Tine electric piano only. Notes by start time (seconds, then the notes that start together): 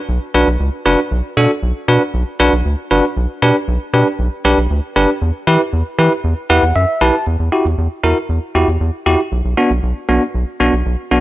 0.34 D4 F#4 B4
0.86 D4 F#4 B4
1.37 D4 F#4 A4
1.88 D4 F#4 B4
2.40 D4 F#4 B4
2.91 D4 F#4 B4
3.42 D4 G4 B4
3.94 D4 G4 B4
4.45 D4 G4 B4
4.96 D4 G4 B4
5.47 E4 G4 B4
5.99 E4 G4 B4
6.50 E4 G4 B4 F#5
6.76 E5
7.01 E4 G4 B4 A5
7.52 E4 F#4 G4
8.04 E4 F#4 A#4
8.55 E4 F#4 G4
9.06 E4 F#4 G4
9.58 B3 D4 F#4
10.09 B3 D4 F#4
10.60 B3 D4 F#4
11.11 B3 D4 F#4